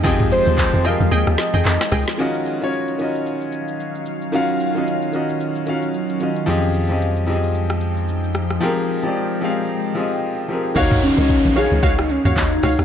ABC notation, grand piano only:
X:1
M:4/4
L:1/16
Q:"Swing 16ths" 1/4=112
K:Ebdor
V:1 name="Grand piano"
[F,C=GAe]4- [F,CGAe] z [F,CGAB]6 z4 | [E,DFGe]2 z [E,DFGd]2 z [E,DFGe]6 z4 | [E,DFGf]2 z [E,DFGe]2 z [E,DFGe]3 z [E,DFGf]3 z [E,DFGe]2 | [F,C=GAe]2 z [F,CGAe]2 z [F,CGAe]6 z4 |
[F,C=GAB]2 z [F,CGA=d]2 z [F,CGAf]3 z [F,CGAe]3 z [F,CGAB]2 | [E,EGdf]2 z [E,EGde]2 z [E,EGdf]6 z4 |]